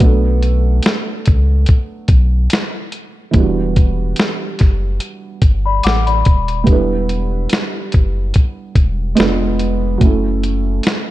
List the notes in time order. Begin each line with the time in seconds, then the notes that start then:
Already playing: F#3 A3
0.00 B1 B3 D4, kick, closed hi-hat
0.04 A4
0.43 closed hi-hat
0.83 snare, closed hi-hat
1.25 C#2, kick, closed hi-hat
1.66 kick, closed hi-hat
2.08 B1, kick, closed hi-hat
2.50 snare, closed hi-hat
2.92 closed hi-hat
3.31 E1 E3 G3, kick, closed hi-hat
3.36 B3 D4
3.40 F#4
3.76 kick, closed hi-hat
4.16 snare, closed hi-hat
4.59 F#1, kick, snare, closed hi-hat
5.00 closed hi-hat
5.42 G1, kick, closed hi-hat
5.66 D5 B5
5.83 A1 F#5 D6, snare, closed hi-hat
6.07 D5 B5, closed hi-hat
6.25 D#1, kick, closed hi-hat
6.48 closed hi-hat
6.64 E1 G3 B3, kick, closed hi-hat
6.68 D4 E4
6.72 B4
7.09 closed hi-hat
7.50 snare, closed hi-hat
7.92 F#1, kick, closed hi-hat
8.34 kick, closed hi-hat
8.75 E1, kick, closed hi-hat
9.15 F1 G#3 B3 D4 F4, closed hi-hat
9.20 B4, snare
9.59 closed hi-hat
9.98 F#1 F#3 A3, kick, closed hi-hat
10.02 C#4 E4
10.06 A4
10.44 closed hi-hat
10.83 snare, closed hi-hat